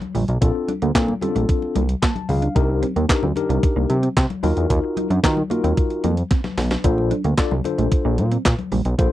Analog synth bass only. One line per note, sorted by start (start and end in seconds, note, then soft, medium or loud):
0.15 0.25 A#1 medium
0.29 0.38 B1 medium
0.42 0.51 A#1 medium
0.82 0.92 D2 medium
0.95 1.14 A#2 loud
1.36 1.45 A#1 medium
1.76 1.95 C2 medium
2.29 2.48 C#2 medium
2.56 2.84 C2 loud
2.96 3.06 D#2 medium
3.23 3.33 D2 medium
3.49 3.59 C2 medium
3.76 3.86 C2 loud
3.90 4.09 C3 loud
4.17 4.26 C3 loud
4.43 4.53 D#2 loud
4.57 4.66 E2 medium
4.70 4.80 D#2 loud
5.10 5.20 F#2 loud
5.24 5.43 D#3 loud
5.64 5.73 D#2 medium
6.04 6.23 F2 medium
6.57 6.77 B1 medium
6.84 7.13 A#1 loud
7.25 7.34 D2 medium
7.51 7.61 C2 medium
7.78 7.88 A#1 medium
8.05 8.20 A#1 loud
8.18 8.37 A#2 medium
8.45 8.55 A#2 loud
8.72 8.82 A#1 medium
8.85 8.95 B1 loud
8.99 9.08 A#1 loud